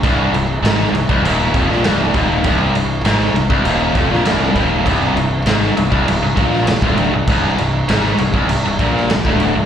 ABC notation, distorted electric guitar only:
X:1
M:4/4
L:1/16
Q:1/4=99
K:Cm
V:1 name="Distorted electric guitar" clef=bass
C,,2 C,,2 A,,2 C,, C,, E,,2 F,, B,, C,,2 E,,2 | C,,2 C,,2 A,,2 C,, C,, E,,2 F,, B,, C,,2 E,,2 | C,,2 C,,2 A,,2 C,, C,, C,, C,, B,,2 C,, D,,2 C,, | C,,2 C,,2 A,,2 C,, C,, C,, C,, B,,2 C,, D,,2 C,, |]